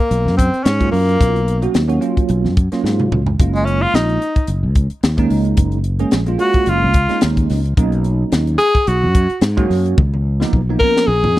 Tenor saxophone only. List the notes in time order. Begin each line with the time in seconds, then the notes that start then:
Already playing: A#3
0.37 C4
0.64 C#4
0.92 A#3
3.55 G#3
3.65 C#4
3.82 F4
3.95 D#4
6.40 F#4
6.69 F4
8.58 G#4
8.88 F#4
10.79 A#4
11.07 G#4